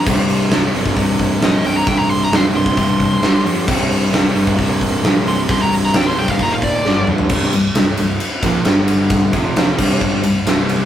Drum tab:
CC |x---------------|----------------|x---------------|----------------|
RD |----------------|----------------|----------------|----------------|
HH |--o-o-o-o-o-o-o-|o-o-o-o-o-o-o-o-|--o-o-o-o-o-o-o-|o-o-o-o-o-o-----|
SD |----o-------o---|----o-------o---|----o-------o---|----o-------o---|
T1 |----------------|----------------|----------------|-------------o--|
T2 |----------------|----------------|----------------|--------------o-|
FT |----------------|----------------|----------------|---------------o|
BD |o------oo-o-----|o------oo-o-----|o------oo-o-----|o------oo-o-----|

CC |x---------------|------x---------|
RD |--x-x-x-x-x-x-x-|x-x-x-----x-x-x-|
HH |----------------|----------------|
SD |----o-------o---|----o-------o---|
T1 |----------------|----------------|
T2 |----------------|----------------|
FT |----------------|----------------|
BD |o---------o-----|o-o---o-o-------|